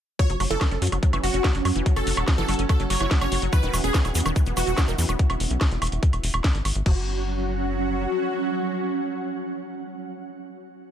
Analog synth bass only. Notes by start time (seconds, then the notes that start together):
0.30 F#1
0.40 F#1
0.51 F#1
0.71 F#1
0.82 F#2
0.92 F#1
1.13 F#1
1.23 F#1
1.34 F#1
1.55 F#1
1.65 F#2
1.76 F#1
1.96 F#1
2.07 F#1
2.17 E1
2.38 F#1
2.49 F#1
2.59 F#1
2.80 F#1
2.90 F#1
3.01 F#1
3.21 F#1
3.32 F#1
3.42 F#1
3.63 E1
3.73 E1
3.84 E1
4.05 E1
4.15 E2
4.26 E1
4.46 E1
4.57 E1
4.67 E1
4.88 E1
4.98 E2
5.09 E1
5.30 E1
5.40 E1
5.51 B1
5.71 E1
5.82 E1
5.92 E1
6.13 E1
6.24 E1
6.34 E1
6.55 G#1
6.65 G#1
6.76 G#1
6.86 F#1